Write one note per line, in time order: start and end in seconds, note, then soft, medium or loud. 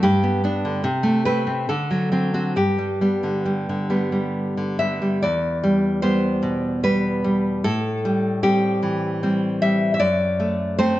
0.03 0.81 G2 medium
0.03 1.21 G4 medium
0.23 0.43 B3 soft
0.44 0.80 B3 soft
0.44 0.80 D4 soft
0.65 0.84 D3 soft
0.84 1.66 C3 medium
1.03 1.25 A3 soft
1.25 1.65 A3 soft
1.25 1.46 C4 soft
1.25 1.67 B4 medium
1.47 1.68 C4 soft
1.69 2.54 D3 soft
1.69 2.32 A4 medium
1.91 2.11 F#3 soft
2.12 2.52 F#3 soft
2.12 2.33 C4 soft
2.34 2.56 C4 soft
2.34 2.56 F#4 soft
2.56 5.18 G2 soft
2.56 4.76 G4 soft
2.78 3.00 G3 soft
3.01 3.44 G3 soft
3.01 3.89 B3 soft
3.23 3.68 D3 soft
3.46 3.89 G3 soft
3.69 4.56 D3 soft
3.90 4.11 G3 soft
3.90 4.79 B3 soft
4.12 4.78 G3 soft
4.57 5.22 D3 soft
4.79 5.00 G3 soft
4.79 5.18 B3 soft
4.79 5.20 E5 medium
5.02 5.22 G3 soft
5.22 7.62 E2 soft
5.22 6.00 D5 medium
5.64 6.02 G3 soft
6.02 6.82 G3 soft
6.02 6.83 B3 soft
6.02 6.80 C5 medium
6.43 7.64 B2 soft
6.83 7.23 G3 soft
6.83 7.61 B3 soft
6.83 7.61 B4 medium
7.24 7.65 G3 soft
7.64 9.97 A2 medium
7.64 8.40 A4 medium
8.05 8.42 G3 soft
8.43 9.22 G3 soft
8.43 9.22 C4 soft
8.43 9.19 G4 medium
8.83 10.01 E3 soft
9.23 9.61 G3 soft
9.23 9.98 C4 soft
9.62 10.01 G3 soft
9.62 9.93 E5 medium
9.94 10.01 E5 medium
10.00 11.00 F#2 soft
10.00 10.76 D5 medium
10.40 10.78 A3 soft
10.79 11.00 A3 soft
10.79 11.00 C4 soft
10.79 11.00 C5 medium